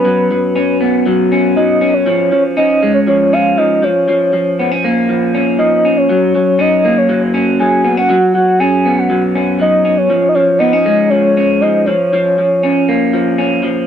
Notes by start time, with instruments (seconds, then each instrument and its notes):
Already playing: clean electric guitar C#4, soft synth lead B4
0.05 clean electric guitar F#3
0.31 clean electric guitar F#3
0.55 clean electric guitar C#4
0.81 clean electric guitar B3
1.06 clean electric guitar F#3
1.32 clean electric guitar C#4
1.56 clean electric guitar F#3, soft synth lead D#5
1.81 clean electric guitar C#4
1.94 soft synth lead C#5
2.06 clean electric guitar F3
2.32 clean electric guitar F3, soft synth lead C#5
2.57 clean electric guitar C#4, soft synth lead D#5
2.83 clean electric guitar G#3
2.94 soft synth lead C#5
3.07 clean electric guitar F3, soft synth lead C#5
3.33 clean electric guitar C#4, soft synth lead F5
3.57 clean electric guitar F3, soft synth lead D#5
3.83 clean electric guitar F3, soft synth lead C#5
4.08 clean electric guitar F3
4.33 clean electric guitar F3
4.59 clean electric guitar B3
4.72 clean electric guitar C#4
4.84 clean electric guitar A#3
5.09 clean electric guitar F3
5.35 clean electric guitar C#4
5.58 clean electric guitar F3, soft synth lead D#5
5.85 clean electric guitar C#4
5.97 soft synth lead C#5
6.09 clean electric guitar F#3
6.35 clean electric guitar F#3, soft synth lead C#5
6.59 clean electric guitar C#4, soft synth lead D#5
6.85 clean electric guitar A#3
6.98 soft synth lead C#5
7.09 clean electric guitar F#3
7.34 clean electric guitar C#4
7.60 clean electric guitar F#3, soft synth lead G#5
7.84 clean electric guitar B3
7.97 clean electric guitar C#4, soft synth lead F#5
8.10 clean electric guitar F#3
8.34 clean electric guitar F#3, soft synth lead F#5
8.59 clean electric guitar C#4, soft synth lead G#5
8.85 clean electric guitar B3
8.99 soft synth lead F#5
9.10 clean electric guitar F#3
9.35 clean electric guitar C#4
9.60 clean electric guitar F#3, soft synth lead D#5
9.85 clean electric guitar C#4
9.97 soft synth lead C#5
10.10 clean electric guitar F3
10.29 soft synth lead D#5
10.35 clean electric guitar F3, soft synth lead C#5
10.59 clean electric guitar B3, soft synth lead D#5
10.73 clean electric guitar C#4
10.86 clean electric guitar G#3
11.10 clean electric guitar F3, soft synth lead C#5
11.37 clean electric guitar C#4
11.61 clean electric guitar F3, soft synth lead D#5
11.86 clean electric guitar F3, soft synth lead C#5
12.13 clean electric guitar F3
12.38 clean electric guitar F3
12.63 clean electric guitar C#4
12.88 clean electric guitar A#3
13.13 clean electric guitar F3
13.38 clean electric guitar C#4
13.63 clean electric guitar F3